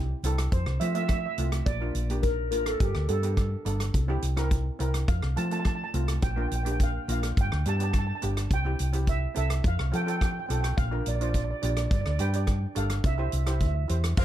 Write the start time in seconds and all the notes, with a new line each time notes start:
Already playing: C2 D5
0.23 C2 C4 E4 A4, closed hi-hat
0.38 cross-stick, closed hi-hat
0.52 F2 C5, kick, closed hi-hat
0.66 C2, cross-stick
0.80 F3 A3 C4 F4 E5, closed hi-hat
0.87 E5
0.95 A3 C4 F4 E5, closed hi-hat
1.02 E5
1.09 E5, kick, cross-stick, closed hi-hat
1.18 E5
1.26 E5
1.38 C2 A3 C4 F4, closed hi-hat
1.52 cross-stick, closed hi-hat
1.66 A#1 D5, kick, closed hi-hat
1.81 A#3 D4 F4
1.95 A#1, closed hi-hat
2.10 A#3 D4 G4, closed hi-hat
2.23 A#4, kick, closed hi-hat
2.51 A1 A#3 D4 F4 A#4, closed hi-hat
2.66 A4, cross-stick, closed hi-hat
2.80 G1 G4, kick, closed hi-hat
2.95 D2, cross-stick
3.08 G2 B3 D4 G4 A4, closed hi-hat
3.23 B3 D4 G4, closed hi-hat
3.37 kick, cross-stick, closed hi-hat
3.65 G1 B3 D4 A4, closed hi-hat
3.80 cross-stick, closed hi-hat
3.94 C2, kick, closed hi-hat
4.08 C4 E4 G4
4.22 C2, closed hi-hat
4.37 C4 E4 A#4, cross-stick, closed hi-hat
4.51 kick, closed hi-hat
4.79 C2 C4 E4 A#4, closed hi-hat
4.94 cross-stick, closed hi-hat
5.08 F2 F5, kick, closed hi-hat
5.22 C2, cross-stick
5.36 F3 A3 C4 F4 A5, closed hi-hat
5.45 A5
5.51 A3 C4 F4 A5, closed hi-hat
5.60 A5
5.65 A5, kick, cross-stick, closed hi-hat
5.75 A5
5.84 A5
5.94 C2 A3 C4 F4, closed hi-hat
6.08 cross-stick, closed hi-hat
6.22 A#1 G5, kick, closed hi-hat
6.32 G5
6.36 A#3 D4 F4 G5
6.48 A#1 G5, closed hi-hat
6.55 G5
6.63 A#3 D4 G4 G5, closed hi-hat
6.72 G5
6.80 F5, kick, closed hi-hat
7.08 A#1 A#3 D4 F4, closed hi-hat
7.12 F5
7.23 cross-stick, closed hi-hat
7.37 G1 G5, kick, closed hi-hat
7.52 D2, cross-stick
7.66 G2 B3 D4 G4 A5, closed hi-hat
7.77 B3 A5, closed hi-hat
7.81 D4 G4 A5
7.91 A5, kick, cross-stick, closed hi-hat
7.99 A5
8.07 A5
8.15 A5
8.22 G1 B3 D4 G4, closed hi-hat
8.37 cross-stick, closed hi-hat
8.50 C2 G5, kick, closed hi-hat
8.65 C4 E4 G4
8.79 C2, closed hi-hat
8.93 C4 E4 G4, closed hi-hat
9.07 E5, kick, closed hi-hat
9.35 C2 C4 E4 A4 E5, closed hi-hat
9.50 cross-stick, closed hi-hat
9.64 F2 F5, kick, closed hi-hat
9.79 C2, cross-stick
9.92 F3 C4 F4 A4 G5, closed hi-hat
10.02 C4 G5
10.07 F4 A4 G5, closed hi-hat
10.16 G5
10.21 G5, kick, cross-stick, closed hi-hat
10.31 G5
10.39 G5
10.46 B1 C4 F4 A4 G5, closed hi-hat
10.53 G5
10.61 G5, cross-stick, closed hi-hat
10.77 A#1 F5, kick, closed hi-hat
10.91 D4 F4 A#4
11.06 A#1 D5, closed hi-hat
11.15 D5
11.21 D4 F4 C5 D5, closed hi-hat
11.29 D5
11.34 D5, kick, closed hi-hat
11.44 D5
11.51 D5
11.62 A#1 D4 F4 G4 D5, closed hi-hat
11.70 D5
11.77 D5, cross-stick, closed hi-hat
11.86 D5
11.91 G1 D5, kick, closed hi-hat
12.01 D5
12.06 D2 D5, cross-stick
12.19 G2 D4 G4 B4 G5, closed hi-hat
12.33 D4 G4 D5, closed hi-hat
12.47 kick, cross-stick, closed hi-hat
12.75 G1 D4 G4 A4 F5, closed hi-hat
12.90 cross-stick, closed hi-hat
13.04 C2 E5, kick, closed hi-hat
13.15 E4 G4 E5
13.19 C5 E5
13.30 C2 E5, closed hi-hat
13.36 E5
13.45 E4 G4 C5 E5, cross-stick, closed hi-hat
13.51 E5
13.60 D2 E5, kick, closed hi-hat
13.67 E5
13.75 E5
13.88 E2 E4 G4 C5, closed hi-hat
14.04 cross-stick, closed hi-hat
14.17 F2 C5 F5, kick, crash